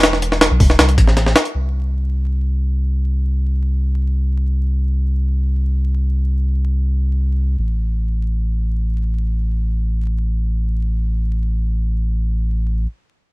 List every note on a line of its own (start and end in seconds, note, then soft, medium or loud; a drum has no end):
0.00 0.49 E1 loud
0.00 snare loud
0.00 closed hi-hat medium
0.13 snare soft
0.22 closed hi-hat medium
0.32 snare medium
0.41 snare loud
0.41 closed hi-hat medium
0.51 0.59 B1 loud
0.60 0.79 E1 loud
0.60 kick loud
0.60 open hi-hat medium
0.70 snare medium
0.79 0.99 C2 loud
0.79 snare loud
0.79 closed hi-hat medium
0.89 closed hi-hat soft
0.98 1.34 A1 loud
0.98 kick medium
0.98 closed hi-hat medium
1.07 snare soft
1.17 snare soft
1.17 closed hi-hat medium
1.26 snare soft
1.36 snare loud
1.36 closed hi-hat medium
1.45 closed hi-hat soft
1.55 7.56 C2 medium
7.58 12.87 A1 medium